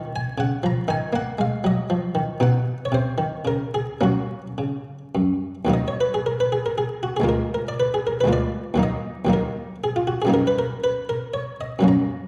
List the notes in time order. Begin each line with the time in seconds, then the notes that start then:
Already playing: D#3 C#4
0.16 G#5
0.38 C#3 F#5
0.63 F3 A#5
0.88 D#3 D#4 G#5
1.13 A#3 F#5
1.38 G#3 F5
1.64 F#3 D#5
1.90 F3
2.15 D#3
2.40 B2 D#4 F#5
2.85 C#5
2.92 C3 C5
3.18 D#3
3.45 C#3 A#4
3.74 G#4
4.01 F#3 A#3 C#4 F#4
4.58 C#3
5.15 F#2
5.65 D#2 F#3 A#3
5.70 D#4 D#5
5.88 C#5
6.01 B4
6.14 G#4
6.26 A#4
6.40 B4
6.52 G#4
6.66 A#4
6.78 G#4
7.03 F#4
7.17 D2 G#4
7.22 G#3 A#3 F4
7.29 A#4
7.54 A#4
7.68 D5
7.80 B4
7.94 G#4
8.07 A#4
8.21 D2 B4
8.25 G#3 A#3 F4
8.33 D5
8.74 D#2 F#3 A#3
8.79 D#4 D#5
9.25 D#2 F#3 A#3
9.30 D#4 A#4
9.84 G#4
9.96 F4
10.07 F#4
10.22 F#2 G#4
10.27 F#3 A#3 D#4
10.34 A#4
10.47 B4
10.59 A#4
10.84 B4
11.09 A#4
11.34 C#5
11.61 D#5
11.79 F#2 F#3 A#3
11.84 C#4
11.88 A#5